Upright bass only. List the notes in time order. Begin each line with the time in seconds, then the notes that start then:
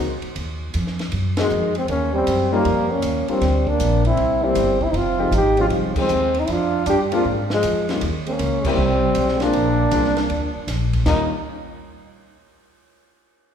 Already playing: C#2
0.23 muted upright bass stroke
0.36 D#2
0.74 F2
1.12 F#2
1.51 F2
1.89 D#2
2.27 F#2
2.65 F2
3.03 D#2
3.28 muted upright bass stroke
3.41 D2
3.80 A#1
4.17 C2
4.55 G1
4.93 F1
5.31 G#1
5.70 C2
6.10 D#2
6.49 F2
6.86 G2
7.25 G#2
7.63 F2
8.02 D#2
8.39 C#2
8.77 C2
9.15 B1
9.54 A#1
9.92 C2
10.30 D2
10.55 muted upright bass stroke
10.67 A#1
11.06 D#2